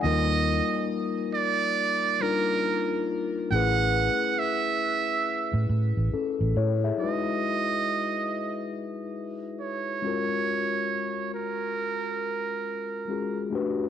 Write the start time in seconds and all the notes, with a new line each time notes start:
0.02 D#2 F3 A#3 D#4 F4 D#5
0.07 G3 A#4
1.35 D5
2.21 G3 D4 D#4 F4 A#4
3.50 A1 A3 C#4 E4 F#5
3.54 G#4 B4
4.39 E5
5.53 A2
5.69 A2
5.97 A1
6.13 C#4 A4, muted fingered electric bass stroke
6.40 A1
6.56 A2 E4 C#5
6.84 G#4 E5
6.97 F#3 D#4 E4 F#4 D#5
7.03 G#3 B4
9.61 C#5
10.02 G#3 C#4 F4 F#4
10.07 A#4
11.35 A#4
13.08 G#3 C#4 F4 F#4 G#4
13.50 A3 D4 F#4 G4
13.55 B4